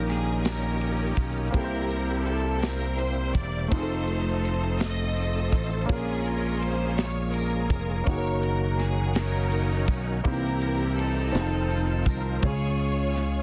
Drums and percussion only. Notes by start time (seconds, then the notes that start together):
0.10 snare, ride
0.45 snare, ride, tambourine
0.81 ride, tambourine
1.17 kick, ride, tambourine
1.54 kick, ride, tambourine
1.90 ride
2.27 ride
2.63 snare, ride, tambourine
2.99 ride, tambourine
3.35 kick, ride, tambourine
3.71 kick, ride, tambourine
4.08 ride
4.45 ride
4.80 snare, ride, tambourine
5.16 ride, tambourine
5.52 kick, ride, tambourine
5.89 kick, ride, tambourine
6.26 ride
6.62 ride
6.98 snare, ride, tambourine
7.34 ride, tambourine
7.70 kick, ride, tambourine
8.06 kick, ride, tambourine
8.43 ride
8.79 snare, ride
9.15 snare, ride, tambourine
9.52 ride, tambourine
9.88 kick, ride, tambourine
10.24 kick, ride, tambourine
10.61 ride
10.99 ride
11.35 snare, ride, tambourine
11.71 ride, tambourine
12.06 kick, ride, tambourine
12.43 kick, ride, tambourine
12.79 ride
13.16 snare, ride